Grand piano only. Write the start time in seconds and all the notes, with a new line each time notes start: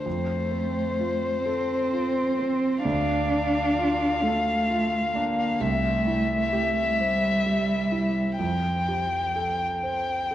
0.06 F2
0.52 C4
0.99 F4
1.46 A4
1.92 F4
2.39 C4
2.85 D2
3.31 D4
3.78 F4
4.23 A4
4.69 F4
5.15 D4
5.60 C2
6.07 E4
6.53 G4
7.01 C5
7.46 G4
7.92 E4
8.39 F2
8.88 G4
9.36 A4
9.83 C5
10.31 A4